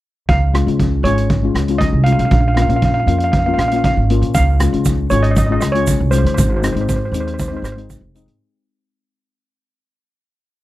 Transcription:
0.29 C#2 F5, kick, closed hi-hat
0.53 G#3 C#4 F4, cross-stick, closed hi-hat
0.67 C#2 G#3 C#4 F4, closed hi-hat
0.80 kick, closed hi-hat
1.03 G#1 G#3 C#4 F4 C#5, closed hi-hat
1.18 closed hi-hat
1.30 kick, closed hi-hat
1.43 G#3 C#4 F4
1.54 C#2, cross-stick, closed hi-hat
1.68 G#3 C#4 F4, closed hi-hat
1.78 D#5, kick, closed hi-hat
1.93 C2
2.04 G#3 C#4 F5, closed hi-hat
2.08 F4
2.12 F5
2.19 B1 F5, closed hi-hat
2.25 F5
2.31 A#1 F5, kick, closed hi-hat
2.41 F5
2.48 F5
2.55 A#3 C#4 F4 F5, cross-stick, closed hi-hat
2.62 F5
2.69 A#1 A#3 C#4 F4 F5, closed hi-hat
2.76 F5
2.82 F5, kick, closed hi-hat
2.94 F5
3.00 F5
3.07 F2 A#3 C#4 F4 F5, closed hi-hat
3.19 F5, closed hi-hat
3.24 F5
3.32 F5, kick, closed hi-hat
3.39 F5
3.46 A#3 C#4 F4 F5
3.54 F5
3.58 A#1 F5, cross-stick, closed hi-hat
3.68 F5, closed hi-hat
3.73 A#3 C#4 F4 F5
3.84 F5, kick, closed hi-hat
3.97 G#1
4.10 A#3 C#4 F4, closed hi-hat
4.22 A#2, closed hi-hat
4.34 C#2 F5, kick, closed hi-hat, shaker
4.60 G#3 C#4 F4, cross-stick, closed hi-hat, shaker
4.73 C#2 G#3 C#4 F4, closed hi-hat
4.85 kick, closed hi-hat, shaker
5.10 G#1 G#3 C#4 F4 C#5, closed hi-hat, shaker
5.23 D#5, closed hi-hat
5.31 D#5
5.36 D#5, kick, closed hi-hat, shaker
5.47 G#3 C#4 D#5
5.51 F4 D#5
5.61 C#2 D#5, cross-stick, closed hi-hat, shaker
5.72 G#3 C#4 F4 C#5, closed hi-hat
5.87 kick, closed hi-hat, shaker
6.00 C2
6.11 G#3 C#4 F4 C5, closed hi-hat, shaker
6.18 C5
6.24 C#3 C5, closed hi-hat
6.34 G#1 C5, shaker
6.38 C5, kick, closed hi-hat
6.50 C5
6.57 C5
6.62 G#3 C4 D#4 C5, cross-stick, closed hi-hat, shaker
6.72 G#1 G#3 C4 C5, closed hi-hat
6.77 D#4 C5
6.89 C5, kick, closed hi-hat, shaker
6.96 C5
7.05 C5
7.12 D#2 G#3 C4 D#4 C5, closed hi-hat, shaker
7.20 C5
7.27 C5, closed hi-hat
7.34 C5
7.39 C5, kick, closed hi-hat, shaker
7.48 G#3 C4 C5
7.53 D#4 C5
7.62 G#1 C5, cross-stick, closed hi-hat, shaker
7.72 C5
7.76 G#3 C4 D#4, closed hi-hat
7.90 kick, closed hi-hat, shaker
8.01 F1
8.15 G#3 C4 D#4, closed hi-hat, shaker
8.26 G#2, closed hi-hat

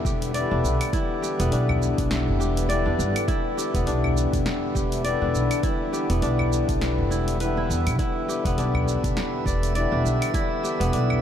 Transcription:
Already playing: D3 E3 G3 B3 D4 E4
0.05 E1 G4, kick, shaker
0.22 open hi-hat, shaker
0.34 D3 E3 G3 B3 E4 D5, open hi-hat, shaker
0.51 E1 D4
0.64 B1, shaker
0.81 open hi-hat, claves, shaker
0.91 D3 E3 G3 B3 E4, kick, open hi-hat, shaker
0.95 E4
1.22 G4, shaker
1.39 E1 B3, open hi-hat, shaker
1.52 B1 D4, open hi-hat, shaker
1.69 udu, claves
1.82 shaker
1.98 B1, kick, open hi-hat, shaker
2.11 snare, open hi-hat, shaker
2.28 G1
2.40 E1 G4, shaker
2.57 open hi-hat, shaker
2.68 D3 E3 G3 B3 E4 D5, open hi-hat, shaker
2.86 E2 D4
2.99 G1, shaker
3.16 open hi-hat, claves, shaker
3.26 D3 E3 G3 B3 E4, kick, open hi-hat, shaker
3.30 E4
3.57 G4, shaker
3.74 E1 B3, kick, open hi-hat, shaker
3.86 B1 D4, open hi-hat, shaker
4.04 udu, claves
4.17 shaker
4.33 B1, kick, open hi-hat, udu, shaker
4.46 snare, open hi-hat, shaker
4.75 E1 G4, kick, shaker
4.92 open hi-hat, shaker
5.04 D3 E3 G3 B3 E4 D5, open hi-hat, shaker
5.22 E1 D4
5.34 B1, shaker
5.51 open hi-hat, claves, shaker
5.62 D3 E3 G3 B3 E4, kick, open hi-hat, shaker
5.66 E4
5.93 G4, shaker
6.10 E1 B3, open hi-hat, shaker
6.22 B1 D4, open hi-hat, shaker
6.39 udu, claves
6.53 shaker
6.69 B1, kick, open hi-hat, shaker
6.81 snare, open hi-hat, shaker
6.98 G1
7.10 E1 E4, shaker
7.28 open hi-hat, shaker
7.39 D3 E3 G3 B3 E4 B4, open hi-hat, shaker
7.57 E4
7.70 E2, shaker
7.86 B1, open hi-hat, claves, shaker
7.97 D3 E3 G3 B3 E4 E5, kick, open hi-hat, shaker
8.28 G4, shaker
8.45 E1 B3, kick, open hi-hat, shaker
8.58 B1 D4, open hi-hat, shaker
8.74 udu, claves
8.88 shaker
9.04 B1, kick, open hi-hat, udu, shaker
9.17 snare, open hi-hat, shaker
9.46 E1 D5, kick, shaker
9.63 open hi-hat, shaker
9.74 D3 E3 G3 B3 E4 D5, open hi-hat, shaker
9.92 E1 D4
10.05 B1, shaker
10.22 open hi-hat, claves, shaker
10.32 D3 E3 G3 B3 E4, kick, open hi-hat, shaker
10.63 G4, shaker
10.80 E1 B3, open hi-hat, shaker
10.93 B1 D4, open hi-hat, shaker
11.10 udu, claves

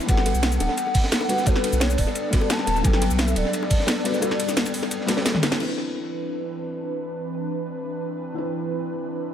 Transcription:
Already playing: E3 C4 D4 B4 C5
0.00 shaker
0.06 G1 G3 B3 D4 F#4 A4 F#5, kick, closed hi-hat, ride, shaker
0.11 A4
0.17 snare
0.26 closed hi-hat, ride, high bongo
0.35 B1, shaker
0.43 snare, closed hi-hat, ride, shaker
0.52 shaker
0.60 D1, closed hi-hat, ride, high bongo, shaker
0.69 snare
0.77 F#5, closed hi-hat, ride, shaker
0.87 high bongo
0.94 kick, closed hi-hat, open hi-hat, ride, shaker
1.04 snare
1.11 snare, closed hi-hat, ride, shaker
1.21 ride, high bongo
1.28 G3 B3 F#4 B4, closed hi-hat, ride
1.38 snare, shaker
1.44 G3 B3 F#4 B4, kick, closed hi-hat, ride, high bongo, shaker
1.49 A4
1.56 snare, ride
1.64 closed hi-hat, ride
1.73 B1, shaker
1.80 C#5, snare, closed hi-hat, ride, high bongo, shaker
1.90 shaker
1.98 D1 D5, kick, open hi-hat, ride, shaker
2.07 ride, high bongo
2.15 closed hi-hat, ride, shaker
2.30 G3 B3 F#4, kick, snare, closed hi-hat, ride, shaker
2.35 A4
2.41 high bongo
2.50 A5, snare, closed hi-hat, ride, shaker
2.58 snare
2.66 D1, closed hi-hat, ride, high bongo
2.76 shaker
2.82 G1 F#3 G3 B3 G5, kick, closed hi-hat, ride, shaker
2.87 A4
2.93 snare
3.02 closed hi-hat, ride, high bongo
3.11 B1, shaker
3.19 E5, snare, closed hi-hat, ride, shaker
3.28 high bongo, shaker
3.36 D1 D5, closed hi-hat, ride, shaker
3.45 snare
3.53 closed hi-hat, ride, shaker
3.63 high bongo
3.70 kick, closed hi-hat, open hi-hat, ride, shaker
3.80 snare
3.87 snare, closed hi-hat, ride, high bongo, shaker
3.96 ride
4.04 G3 B3 F#4 B4, closed hi-hat, ride
4.14 snare, shaker
4.20 G3 B3 F#4, closed hi-hat, ride, high bongo, shaker
4.25 A4
4.31 snare, ride
4.39 closed hi-hat, ride, shaker
4.48 snare, high bongo, shaker
4.57 snare, closed hi-hat, ride, shaker
4.66 ride, shaker
4.73 snare, open hi-hat, ride, shaker
4.83 ride, high bongo
4.91 closed hi-hat, ride, shaker
5.01 snare
5.06 G3 B3 F#4, snare, closed hi-hat, ride, high bongo, shaker
5.11 A4
5.17 snare, ride
5.25 snare, closed hi-hat, ride, shaker
5.34 snare, mid tom
5.43 snare, closed hi-hat, ride, high bongo
5.52 snare, ride, shaker
5.58 E3 C4 D4 B4, crash
5.62 B4
8.34 E3 C4 D4
8.38 B4

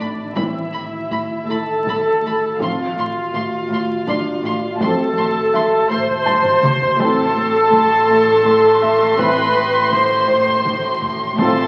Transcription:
Already playing: A1 C4 D4 D5
0.00 A3
0.35 A1 A2 E3 C4 E4 E5 B5, taiko
0.71 A1 A2 A3 B5
1.10 A1 A2 A3 B5, taiko
1.48 A1 A2 A4 A5 B5
1.85 A1 A2 B5, taiko
2.23 A1 A2 A3 B5
2.60 A1 A2 F3 C4 F4 F5 C6, taiko
2.96 A1 A2 A3 C6
3.33 A1 A2 A3 C6, taiko
3.69 A1 A2
3.74 C6
4.07 A1 A2 D4 D5 C6, taiko
4.44 A1 A2 A3 C6
4.81 A1 A2 F3 C4 A4 A5 C6, taiko
5.18 A1 A2 A3 C6
5.54 A1 A2 A3 E5 C6, taiko
5.90 A1 A2 C5 C6
6.08 taiko low
6.26 A1 A2 A5 C6, taiko
6.45 taiko low-mid
6.63 A1 A2 A3 C6, taiko mid
6.82 taiko low
6.99 A1 A2 E3 C4 A4 A5 C6, taiko
7.36 A3
7.72 A3, taiko
8.10 A2
8.28 taiko low
8.45 A2, taiko
8.82 A3 E5, taiko low
9.18 A2 E3 C4 B4 B5, taiko
9.56 A3
9.91 A3 C5 C6, taiko
10.28 A2 C5
10.46 taiko low
10.65 A2, taiko
11.02 A3, taiko low
11.38 A1 A2 F3 C4 A4 A5 C6, taiko

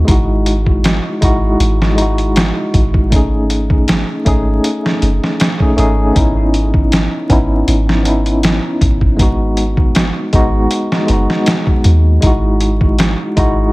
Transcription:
0.05 G#1 G#3 D#4, kick, closed hi-hat
0.09 E4 F#4
0.46 closed hi-hat
0.66 kick
0.84 snare, closed hi-hat
1.21 G#1 G#3 D#4 E4 F#4, kick, closed hi-hat
1.60 G#1, closed hi-hat
1.82 snare
1.96 G#3 D#4, closed hi-hat
2.00 E4 F#4
2.18 closed hi-hat
2.36 snare, closed hi-hat
2.74 G#1, kick, closed hi-hat
2.94 kick
3.10 A3 C#4 D#4, kick, closed hi-hat
3.16 G#4
3.50 closed hi-hat
3.70 kick
3.88 snare, closed hi-hat
4.25 G#1 A3 C#4 D#4 G#4, kick, closed hi-hat
4.64 closed hi-hat
4.86 snare
5.02 F#1, closed hi-hat
5.24 snare
5.40 snare, closed hi-hat
5.59 A3 C#4 D#4 G#4, kick
5.76 G#1 A3 C#4 D#4 G#4, closed hi-hat
6.13 G#1 B3 C#4, kick, closed hi-hat
6.17 D#4 E4
6.54 closed hi-hat
6.74 kick
6.92 snare, closed hi-hat
7.30 G#1 B3 C#4 D#4 E4, kick, closed hi-hat
7.68 G#1, closed hi-hat
7.89 snare
8.03 B3 C#4, closed hi-hat
8.07 D#4 E4
8.26 closed hi-hat
8.43 snare, closed hi-hat
8.81 G#1, kick, closed hi-hat
9.01 kick
9.17 G#3 B3 D#4, kick, closed hi-hat
9.22 F#4
9.57 closed hi-hat
9.77 kick
9.95 snare, closed hi-hat
10.33 G#1 G#3 B3 D#4 F#4, kick, closed hi-hat
10.71 closed hi-hat
10.92 snare
11.07 F#1 G#3 B3, closed hi-hat
11.11 D#4 F#4
11.30 snare
11.46 snare, closed hi-hat
11.67 kick
11.84 D#2, closed hi-hat
12.21 G#1 G#3 D#4, kick, closed hi-hat
12.25 E4 F#4
12.61 closed hi-hat
12.81 kick
12.99 snare, closed hi-hat
13.36 G#1 G#3 D#4 E4 F#4, kick, closed hi-hat

